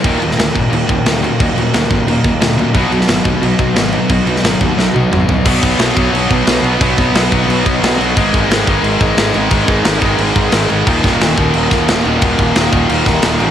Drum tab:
CC |x-x-x-x-x-x-x-x-|x-x-x-x-x-x-x-x-|x-x-x-x-x-x-x-x-|x-x-x-x---------|
SD |---oo-------o---|----o-------o---|---oo-------o---|---oo---o-------|
T1 |----------------|----------------|----------------|----------o-----|
T2 |----------------|----------------|----------------|------------o---|
FT |----------------|----------------|----------------|--------------o-|
BD |o-----o---o-----|o-----o---o-----|o-----o---o-----|o-----o---------|

CC |x-x-x-x-x-x-x-x-|x-x-x-x-x-x-x-x-|x-x-x-x-x-x-x-x-|x-x-x-x-x-x-x-x-|
SD |----o-------o---|----o-------o---|----o-------o---|----o-------o---|
T1 |----------------|----------------|----------------|----------------|
T2 |----------------|----------------|----------------|----------------|
FT |----------------|----------------|----------------|----------------|
BD |o-o---o---o-----|o-o---o---o-----|o-o---o---o-----|o-o---o---o-----|

CC |x-x-x-x-x-x-x-x-|x-x-x-x-x-x-x-x-|
SD |--o-o-----o-o---|----o-----o-o---|
T1 |----------------|----------------|
T2 |----------------|----------------|
FT |----------------|----------------|
BD |o-o---o---o-----|o-o---o---o-----|